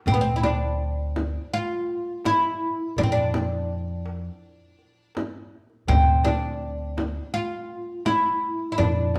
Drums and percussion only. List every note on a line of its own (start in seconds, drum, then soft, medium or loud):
0.07 darbuka dum medium
0.07 frame drum medium
0.43 darbuka tek medium
0.43 frame drum medium
0.80 darbuka ka soft
1.16 frame drum medium
1.52 darbuka ka soft
1.88 darbuka ka soft
2.25 darbuka tek medium
2.25 frame drum medium
2.43 darbuka ka soft
2.61 darbuka ka soft
2.79 darbuka ka soft
2.96 darbuka dum medium
2.96 frame drum medium
3.34 darbuka tek medium
3.34 frame drum medium
3.70 darbuka ka soft
4.06 darbuka tek medium
4.42 darbuka ka soft
4.79 darbuka ka soft
5.15 darbuka tek medium
5.15 frame drum medium
5.33 darbuka ka soft
5.70 darbuka ka soft
5.87 darbuka dum medium
5.87 frame drum medium
6.24 darbuka tek medium
6.24 frame drum medium
6.61 darbuka ka soft
6.97 darbuka tek medium
6.97 frame drum medium
7.34 darbuka ka soft
7.70 darbuka ka soft
8.05 darbuka tek medium
8.05 frame drum medium
8.24 darbuka ka soft
8.42 darbuka ka soft
8.60 darbuka ka soft
8.78 darbuka dum medium
8.78 frame drum medium
9.14 darbuka tek medium
9.14 frame drum medium